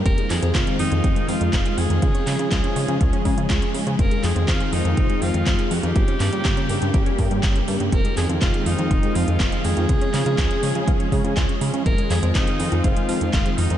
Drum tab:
HH |xxoxxxoxxxoxxxox|xxoxxxoxxxoxxxox|xxoxxxoxxxoxxxox|xxoxxxoxxxoxxxox|
CP |--x-x-------x---|--x-x-------x---|--x-x-------x---|--x-x-------x---|
BD |o---o---o---o---|o---o---o-o-o---|o---o---o---o---|o---o---o-o-o---|

HH |xxoxxxoxxxoxxxox|xxoxxxoxxxoxxxox|xxoxxxoxxxoxxxox|
CP |--x-x-------x---|--x-x-------x---|--x-x-------x---|
BD |o---o---o---o---|o---o---o-o-o---|o---o---o---o---|